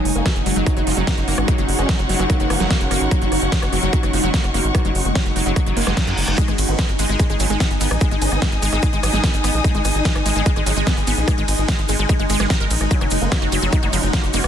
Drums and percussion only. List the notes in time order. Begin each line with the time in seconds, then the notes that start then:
0.05 open hi-hat
0.15 closed hi-hat
0.26 kick, cross-stick, snare, closed hi-hat
0.36 closed hi-hat
0.46 open hi-hat
0.56 closed hi-hat
0.66 kick, cross-stick, closed hi-hat
0.77 closed hi-hat
0.87 open hi-hat
0.97 closed hi-hat
1.07 kick, cross-stick, snare, closed hi-hat
1.18 closed hi-hat
1.28 open hi-hat
1.38 cross-stick, closed hi-hat
1.48 kick, closed hi-hat
1.58 closed hi-hat
1.69 open hi-hat
1.79 cross-stick, closed hi-hat
1.89 kick, snare, closed hi-hat
1.99 closed hi-hat
2.09 open hi-hat
2.20 cross-stick, closed hi-hat
2.30 kick, closed hi-hat
2.40 closed hi-hat
2.50 cross-stick, open hi-hat
2.60 snare, closed hi-hat
2.71 kick, snare, closed hi-hat
2.81 closed hi-hat
2.91 cross-stick, open hi-hat
3.01 closed hi-hat
3.11 kick, closed hi-hat
3.22 closed hi-hat
3.32 cross-stick, open hi-hat
3.42 closed hi-hat
3.52 kick, snare, closed hi-hat
3.62 cross-stick, closed hi-hat
3.73 open hi-hat
3.83 closed hi-hat
3.93 kick, closed hi-hat
4.03 cross-stick, closed hi-hat
4.13 open hi-hat
4.24 closed hi-hat
4.34 kick, snare, closed hi-hat
4.44 cross-stick, closed hi-hat
4.54 open hi-hat
4.64 closed hi-hat
4.75 kick, cross-stick, closed hi-hat
4.85 closed hi-hat
4.95 open hi-hat
5.05 closed hi-hat
5.15 kick, cross-stick, snare, closed hi-hat
5.26 closed hi-hat
5.36 open hi-hat
5.46 closed hi-hat
5.56 kick, cross-stick, closed hi-hat
5.66 closed hi-hat
5.77 open hi-hat
5.87 cross-stick, snare
5.97 kick, snare, closed hi-hat
6.07 closed hi-hat
6.17 open hi-hat
6.28 cross-stick, closed hi-hat
6.38 kick, closed hi-hat, ride, cabasa
6.48 cross-stick, closed hi-hat
6.58 open hi-hat, ride, cabasa
6.68 closed hi-hat, cabasa
6.79 kick, cross-stick, snare, closed hi-hat, cabasa
6.89 closed hi-hat
6.99 open hi-hat, ride, cabasa
7.09 closed hi-hat, cabasa
7.19 kick, cross-stick, closed hi-hat, ride, cabasa
7.30 closed hi-hat
7.40 open hi-hat, ride, cabasa
7.50 closed hi-hat, cabasa
7.60 kick, cross-stick, snare, closed hi-hat, ride, cabasa
7.71 closed hi-hat, cabasa
7.81 open hi-hat, ride, cabasa
7.91 cross-stick, closed hi-hat, cabasa
8.01 kick, closed hi-hat, ride, cabasa
8.11 closed hi-hat
8.22 open hi-hat, ride, cabasa
8.32 cross-stick, closed hi-hat, cabasa
8.42 kick, snare, closed hi-hat, ride, cabasa
8.52 closed hi-hat
8.62 open hi-hat, ride, cabasa
8.72 cross-stick, closed hi-hat, cabasa
8.82 kick, closed hi-hat, ride, cabasa
8.93 closed hi-hat
9.03 cross-stick, open hi-hat, ride, cabasa
9.13 snare, closed hi-hat, cabasa
9.24 kick, snare, closed hi-hat, ride, cabasa
9.34 closed hi-hat, cabasa
9.44 cross-stick, open hi-hat, ride, cabasa
9.54 closed hi-hat, cabasa
9.64 kick, closed hi-hat, ride, cabasa
9.75 closed hi-hat
9.85 cross-stick, open hi-hat, ride, cabasa
9.95 closed hi-hat, cabasa
10.05 kick, snare, closed hi-hat, ride, cabasa
10.15 cross-stick, closed hi-hat
10.26 open hi-hat, ride, cabasa
10.36 closed hi-hat, cabasa
10.46 kick, closed hi-hat, ride, cabasa
10.56 cross-stick, closed hi-hat
10.66 open hi-hat, ride, cabasa
10.77 closed hi-hat, cabasa
10.87 kick, snare, closed hi-hat, ride, cabasa
10.97 cross-stick, closed hi-hat, cabasa
11.07 open hi-hat, ride, cabasa
11.18 closed hi-hat, cabasa
11.28 kick, cross-stick, closed hi-hat, ride, cabasa
11.38 closed hi-hat
11.48 open hi-hat, ride, cabasa
11.58 closed hi-hat, cabasa
11.68 kick, cross-stick, snare, closed hi-hat, ride, cabasa
11.79 closed hi-hat
11.88 open hi-hat, ride, cabasa
11.99 closed hi-hat, cabasa
12.09 kick, cross-stick, closed hi-hat, ride, cabasa
12.20 closed hi-hat
12.30 open hi-hat, ride, cabasa
12.40 cross-stick, snare, closed hi-hat, cabasa
12.50 kick, snare, closed hi-hat, ride, cabasa
12.60 closed hi-hat, cabasa
12.71 open hi-hat, ride, cabasa
12.81 cross-stick, cabasa
12.91 kick, closed hi-hat, ride, cabasa
13.01 cross-stick, closed hi-hat
13.10 open hi-hat, ride, cabasa
13.21 closed hi-hat, cabasa
13.32 kick, cross-stick, snare, closed hi-hat, ride, cabasa
13.42 closed hi-hat
13.52 open hi-hat, ride, cabasa
13.61 closed hi-hat, cabasa
13.72 kick, cross-stick, closed hi-hat, ride, cabasa
13.83 closed hi-hat
13.93 open hi-hat, ride, cabasa
14.03 closed hi-hat, cabasa
14.13 kick, cross-stick, snare, closed hi-hat, ride, cabasa
14.24 closed hi-hat, cabasa
14.33 open hi-hat, ride, cabasa
14.44 cross-stick, closed hi-hat, cabasa